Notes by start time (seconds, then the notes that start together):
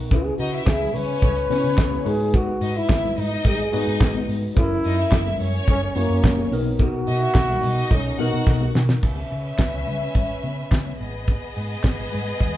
Already playing: B2 B3 D#4 A#4
0.10 C#2 C#3 C#4 E4 B4, kick, closed hi-hat, cowbell
0.25 G#4, muted conga
0.38 C#3 D#4 F#4 D#5, open hi-hat
0.55 E4 E5
0.66 C#2 G#4, kick, snare, clap, closed hi-hat, cowbell, muted conga, high conga
0.81 muted conga, low conga
0.93 C#3 C#4 B4 C#5, open hi-hat, low conga
1.22 C#2, kick, closed hi-hat, cowbell, muted conga, low conga
1.49 C#3 C#4 E4 B4 C#5, snare, open hi-hat, high conga
1.63 C#3
1.77 C#2, kick, snare, clap, closed hi-hat, cowbell, muted conga, high conga
1.91 muted conga, high conga
2.05 G#2 G#3 D#4 F#4 G#4 B4, open hi-hat
2.34 F#4, kick, closed hi-hat, cowbell
2.46 muted conga
2.61 G#2 D#4 D#5, open hi-hat
2.76 E4 E5
2.89 G#1, kick, snare, clap, closed hi-hat, cowbell, muted conga, high conga
3.04 low conga
3.16 G#2 D#4 D#5, open hi-hat, low conga
3.45 G#1 G#4, kick, closed hi-hat, cowbell, muted conga, low conga
3.72 G#2 G#3 D#4 F#4 B4 D#5, open hi-hat, high conga
3.87 G#2
4.00 G#1, kick, snare, clap, closed hi-hat, cowbell, muted conga, high conga
4.15 muted conga, high conga
4.28 G#2, open hi-hat
4.55 F#1 F#3 C#4 E4 G#4, kick, closed hi-hat, cowbell, muted conga
4.63 A#4
4.84 F#2 D#4 D#5, open hi-hat
4.99 E4 E5
5.11 F#1, kick, snare, clap, closed hi-hat, cowbell, high conga
5.27 muted conga, low conga
5.39 F#2 C#4 C#5, open hi-hat, low conga
5.68 F#1 C#4, kick, closed hi-hat, cowbell, muted conga, low conga
5.84 C#4
5.95 F#2 F#3 A#3 C#4 E4 C#5, open hi-hat, high conga
6.10 F#2
6.23 F#1, kick, snare, clap, closed hi-hat, cowbell, high conga
6.37 muted conga, high conga
6.51 B1 B2 B3 D#4 A#4, open hi-hat
6.79 kick, closed hi-hat, cowbell, muted conga
6.83 F#4
7.07 B2 D#4 D#5, open hi-hat, high conga
7.21 E4 E5
7.34 B1, kick, snare, clap, closed hi-hat, cowbell, muted conga, high conga
7.50 muted conga, low conga
7.61 B2 D#4 D#5, open hi-hat, low conga
7.91 B1 C#4, kick, closed hi-hat, cowbell, low conga
8.18 B2 B3 D#4 F#4 A#4 F#5, snare, open hi-hat, high conga
8.33 B2
8.46 B1, kick, snare, cowbell, high conga
8.60 muted conga, high conga
8.75 B2, snare
8.89 snare
9.03 C#2 C#4 B4 E5, kick, crash
9.16 muted conga
9.32 C#3
9.58 C#2, kick, snare, clap, closed hi-hat, muted conga, high conga
9.73 C#2, muted conga
9.87 C#3, low conga
10.15 G#1, kick, closed hi-hat, low conga
10.43 C#3, high conga
10.71 C#3, kick, snare, clap, closed hi-hat, muted conga, high conga
10.86 muted conga, high conga
10.99 G#1 B3 G#4 D#5
11.27 kick, closed hi-hat, muted conga
11.55 G#2, open hi-hat
11.84 G#1, kick, snare, clap, closed hi-hat, muted conga, high conga
11.99 G#1, muted conga
12.12 G#2, open hi-hat, low conga
12.40 D#2, kick, closed hi-hat, low conga